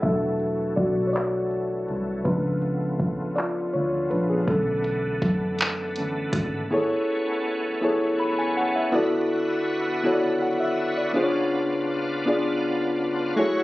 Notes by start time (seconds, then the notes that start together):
Already playing: A5
0.02 E1 E3 F#3 A3 D4 F#4 A4 E5, kick, closed hi-hat
0.40 closed hi-hat
0.76 B1 F#4 D5, kick, closed hi-hat
1.07 C#5
1.13 F#4 D5, clap, closed hi-hat
1.51 closed hi-hat
1.88 C2, closed hi-hat
2.24 C#2 C#3 F3 B3 D4 F4 B4, kick, closed hi-hat
2.62 closed hi-hat
3.00 kick, closed hi-hat
3.36 F4 D5, clap, closed hi-hat
3.73 D2 F4 C#5, closed hi-hat
4.10 A#1 D4 B4, closed hi-hat
4.29 B3 G#4
4.48 B1 D3 E3 A3 C#4 A4, kick, closed hi-hat
4.84 closed hi-hat
5.22 F#2, kick, closed hi-hat
5.59 clap, closed hi-hat
5.96 D3 E3 A3 C#4, closed hi-hat
6.33 G#1, kick, closed hi-hat
6.70 A3 B3 C#4 E4 G#4 A4 C#5
7.81 B3 E4 G#4 A4 C#5
8.20 B5
8.39 G#5
8.57 F#5
8.76 E5
8.92 D3 B3 E4 F#4 A4 D5
10.03 B3 E4 F#4 A4 C#5
10.13 D5
10.42 F#5
10.60 E5
10.98 D5
11.13 C#3 B3 D4 F4 G#4 C5
11.23 C#5
12.26 B3 D4 F4 G#4 D5
13.36 F#3 A3 E4 F#4 G#4 C#5